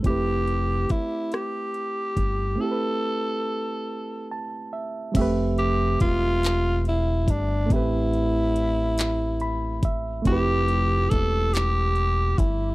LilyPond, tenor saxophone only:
\new Staff \with { instrumentName = "Tenor saxophone" } { \time 6/8 \key f \lydian \tempo 4. = 47 g'4 e'8 g'4. | a'2 r4 | r8 g'8 f'4 e'8 d'8 | e'2~ e'8 r8 |
g'4 a'8 g'4 e'8 | }